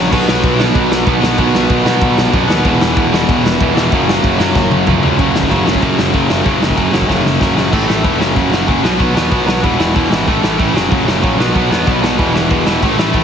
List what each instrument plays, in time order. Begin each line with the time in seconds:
Already playing: picked electric bass A#1, distorted electric guitar F#2 C#3 F#3, overdriven electric guitar C#3 F#3
0.11 picked electric bass B1, overdriven electric guitar B2 F#3 B3 D#4, kick, crash
0.28 picked electric bass B1, snare
0.43 picked electric bass B1, kick, ride
0.59 overdriven electric guitar B2 F#3 B3 D#4, snare
0.75 picked electric bass B1, kick, ride
0.91 picked electric bass B1, snare
1.06 picked electric bass B1, overdriven electric guitar B2 F#3 B3 D#4, kick, ride
1.21 picked electric bass B1, distorted electric guitar B2 F#3 B3, snare
1.37 picked electric bass B1, overdriven electric guitar B2 F#3 B3 D#4, kick, ride
1.55 snare
1.70 picked electric bass B1, kick, ride
1.83 picked electric bass B2, overdriven electric guitar B2 F#3 B3 D#4, snare
2.02 picked electric bass B1, kick, ride
2.17 picked electric bass B1, snare
2.31 picked electric bass F#2, overdriven electric guitar B2 F#3 B3, kick, ride
2.35 overdriven electric guitar D#4
2.48 picked electric bass D#2, distorted electric guitar B2 F#3 B3, snare
2.64 picked electric bass E1, overdriven electric guitar E2 B2 E3 G#3 B3 E4, kick, ride
2.80 picked electric bass E1, snare
2.97 picked electric bass E1, kick, ride
3.11 overdriven electric guitar E2 B2 E3 G#3 B3 E4, snare
3.29 picked electric bass E1, kick, ride
3.43 picked electric bass E1, snare
3.59 picked electric bass E1, overdriven electric guitar E2 B2 E3 G#3 B3 E4, kick, ride
3.75 picked electric bass E1, distorted electric guitar E2 B2 E3, snare
3.91 picked electric bass F#1, overdriven electric guitar F#2 C#3 F#3 A#3 C#4, kick, ride
4.09 snare
4.24 picked electric bass F#1, kick, ride
4.38 picked electric bass F#2, overdriven electric guitar F#2 C#3 F#3 A#3 C#4, snare
4.55 picked electric bass F#1, kick, snare
4.71 picked electric bass F#1, high tom
4.86 picked electric bass C#2, overdriven electric guitar F#2 C#3 F#3 A#3 C#4, kick, mid tom
5.03 picked electric bass C#2, distorted electric guitar F#2 C#3 F#3, floor tom
5.19 picked electric bass F#1, overdriven electric guitar F#2 C#3 F#3 A#3 C#4, kick, crash
5.36 picked electric bass F#1, snare
5.43 kick
5.51 picked electric bass F#1, overdriven electric guitar F#2 C#3 F#3, kick, crash
5.65 picked electric bass F#1, overdriven electric guitar F#2 C#3 F#3 A#3 C#4, snare
5.75 kick
5.82 picked electric bass F#1, overdriven electric guitar F#2 C#3 F#3, kick, crash
5.98 picked electric bass F#1, snare
6.14 picked electric bass F#1, overdriven electric guitar F#2 C#3 F#3, kick, crash
6.30 picked electric bass F#1, overdriven electric guitar F#2 C#3 F#3, snare
6.45 picked electric bass F#1, overdriven electric guitar F#2 C#3 F#3 A#3 C#4, kick, crash
6.61 picked electric bass F#1, snare
6.70 kick
6.78 picked electric bass F#1, overdriven electric guitar F#2 C#3 F#3, kick, crash
6.91 picked electric bass F#1, overdriven electric guitar F#2 C#3 F#3 A#3 C#4, snare
7.01 kick
7.09 picked electric bass F#1, overdriven electric guitar F#2 C#3 F#3, kick, snare
7.25 picked electric bass F#1, snare
7.41 picked electric bass F#1, overdriven electric guitar F#2 C#3 F#3, kick, snare
7.57 picked electric bass F#1, overdriven electric guitar F#2 C#3 F#3, snare
7.72 picked electric bass A1, overdriven electric guitar A2 E3 A3 C#4 E4, kick, crash
7.87 picked electric bass A1, overdriven electric guitar A2 E3 A3, snare
8.03 picked electric bass F1, overdriven electric guitar A2 E3 A3, kick, open hi-hat
8.19 picked electric bass F#1, overdriven electric guitar F#2 C#3 F#3 A#3 C#4 F#4, snare
8.36 picked electric bass F#1, overdriven electric guitar F#2 C#3 F#3, kick, open hi-hat
8.52 picked electric bass F#1, overdriven electric guitar F#2 C#3 F#3, snare
8.68 picked electric bass F#1, overdriven electric guitar F#2 C#3 F#3 A#3 C#4 F#4, kick, open hi-hat
8.83 picked electric bass B1, overdriven electric guitar B2 D#3 F#3 B3 F#4, snare
8.99 picked electric bass B1, overdriven electric guitar B2 F#3 B3, kick, open hi-hat
9.14 picked electric bass E2, overdriven electric guitar B2 F#3 B3, snare
9.31 picked electric bass B1, overdriven electric guitar B2 D#3 F#3 B3 F#4, kick, open hi-hat
9.46 picked electric bass B1, overdriven electric guitar B2 F#3 B3, snare
9.62 picked electric bass E1, overdriven electric guitar E2 B2 E3 G#3 B3 E4, kick, open hi-hat
9.78 overdriven electric guitar E2 B2 E3, snare
9.94 picked electric bass E1, overdriven electric guitar E2 B2 E3, kick, open hi-hat
10.10 picked electric bass G#1, overdriven electric guitar E2 B2 E3 G#3 B3 E4, snare
10.27 picked electric bass A1, overdriven electric guitar A2 E3 A3 C#4 E4, kick, open hi-hat
10.42 picked electric bass A1, overdriven electric guitar A2 E3 A3, snare
10.58 picked electric bass A1, overdriven electric guitar A2 E3 A3, kick, open hi-hat
10.74 picked electric bass F#1, overdriven electric guitar F#2 C#3 F#3 A#3, snare
10.78 overdriven electric guitar C#4
10.90 picked electric bass F#1, overdriven electric guitar F#2 C#3 F#3, kick, open hi-hat
11.06 picked electric bass F#1, overdriven electric guitar F#2 C#3 F#3, snare
11.23 picked electric bass A#1, overdriven electric guitar F#2 C#3 F#3 A#3 C#4, kick, open hi-hat
11.38 picked electric bass B1, overdriven electric guitar B2 F#3 B3 D#4, snare
11.54 picked electric bass B1, overdriven electric guitar B2 F#3 B3, kick, open hi-hat
11.69 picked electric bass E2, overdriven electric guitar B2 F#3 B3, snare
11.86 picked electric bass B1, overdriven electric guitar B2 F#3 B3 D#4, kick, open hi-hat
12.02 picked electric bass B1, overdriven electric guitar B2 F#3 B3, snare
12.18 picked electric bass E1, overdriven electric guitar E2 B2 E3 G#3 B3 E4, kick, open hi-hat
12.34 overdriven electric guitar E2 B2 E3, snare
12.49 picked electric bass E1, overdriven electric guitar E2 B2 E3, kick, open hi-hat
12.65 picked electric bass E1, overdriven electric guitar E2 B2 E3 G#3 B3 E4, snare
12.82 picked electric bass A1, overdriven electric guitar A2 E3 A3 C#4 E4, kick, crash
12.98 picked electric bass A1, overdriven electric guitar A2 E3 A3, snare
13.13 picked electric bass A1, overdriven electric guitar A2 E3 A3, kick, open hi-hat